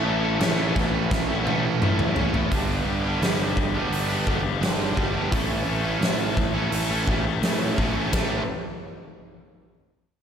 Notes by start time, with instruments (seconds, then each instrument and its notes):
Already playing: overdriven electric guitar A2 E3 A3, distorted electric guitar A2
0.04 picked electric bass A1, distorted electric guitar E3 A3
0.08 distorted electric guitar C#4 E4 A4
0.23 distorted electric guitar A3 C#4 E4 A4
0.38 picked electric bass A1, overdriven electric guitar A2 E3, distorted electric guitar E3, snare, crash
0.42 distorted electric guitar A2 A3 C#4 E4 A4, overdriven electric guitar A3
0.57 distorted electric guitar A3 C#4 E4
0.76 picked electric bass A1, kick, snare
0.92 distorted electric guitar A3 C#4 E4, muted distorted electric guitar stroke
1.11 picked electric bass A1, kick, snare
1.29 distorted electric guitar A3 C#4 E4 A4
1.45 overdriven electric guitar A2 E3 A3, distorted electric guitar E3 A3 C#4 E4, high tom
1.49 distorted electric guitar A4
1.64 distorted electric guitar A3 C#4 E4, muted distorted electric guitar stroke
1.80 picked electric bass A1, distorted electric guitar A2 E3 A3 C#4, mid tom
1.84 distorted electric guitar E4 A4
1.99 mid tom
2.16 picked electric bass A1, distorted electric guitar E3 A3 C#4 E4, floor tom
2.20 distorted electric guitar A4
2.34 distorted electric guitar A3 C#4 E4 A4, floor tom
2.51 picked electric bass G1, distorted electric guitar G2 D3 G3 B3 D4 G4, kick, open hi-hat
2.70 distorted electric guitar G3 B3 D4 G4
2.85 picked electric bass G1, distorted electric guitar G3 B3 D4
2.89 distorted electric guitar G4
3.05 distorted electric guitar G3 B3 D4 G4
3.20 picked electric bass G1, distorted electric guitar G2 D3 G3 B3 D4 G4, snare, open hi-hat
3.57 picked electric bass G1, muted distorted electric guitar stroke, kick
3.74 distorted electric guitar G3 B3 D4 G4
3.90 picked electric bass G1, open hi-hat
4.09 distorted electric guitar G3 B3 D4 G4
4.26 picked electric bass G1, distorted electric guitar D3 G3 B3 D4 G4, kick
4.43 distorted electric guitar G3 B3 D4 G4, muted distorted electric guitar stroke
4.60 picked electric bass G1, distorted electric guitar G2 D3 G3 B3 D4 G4, snare, open hi-hat
4.95 picked electric bass G1, distorted electric guitar D3 G3 B3 D4 G4, kick
5.15 distorted electric guitar G3 B3 D4 G4
5.32 picked electric bass A1, distorted electric guitar A2 E3 A3 C#4 E4 A4, kick, open hi-hat
5.49 distorted electric guitar A3 C#4 A4
5.64 picked electric bass A1, distorted electric guitar E3
5.69 distorted electric guitar A3 C#4 A4
5.83 distorted electric guitar E4 A4
5.87 distorted electric guitar A3 C#4
6.00 picked electric bass A1, distorted electric guitar E3 A3 C#4 E4, snare, open hi-hat
6.04 distorted electric guitar A2 E3 A3 C#4 A4
6.36 picked electric bass A1, muted distorted electric guitar stroke, kick
6.54 distorted electric guitar A3 C#4 E4 A4
6.71 picked electric bass A1, open hi-hat
6.89 distorted electric guitar C#4 E4 A4
6.93 distorted electric guitar A3
7.07 picked electric bass A1, distorted electric guitar E3 A3 C#4 E4 A4, kick
7.25 distorted electric guitar C#4 A4, muted distorted electric guitar stroke
7.29 distorted electric guitar A3
7.41 picked electric bass A1, distorted electric guitar A2 E3 A3, snare, open hi-hat
7.45 distorted electric guitar C#4 E4 A4
7.78 picked electric bass A1, distorted electric guitar E3 A3 C#4 E4 A4, kick
7.95 distorted electric guitar C#4 E4 A4
7.99 distorted electric guitar A3
8.12 picked electric bass A1, distorted electric guitar A2 E3 A3 C#4 A4, kick, snare, ride bell